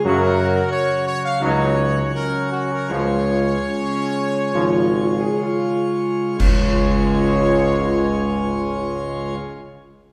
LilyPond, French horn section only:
\new Staff \with { instrumentName = "French horn section" } { \time 4/4 \key des \major \tempo 4 = 70 ges'2 ees'4 des'4 | f'4 des'4 f'8 f'16 aes'16 f'4 | <des' f'>1 | }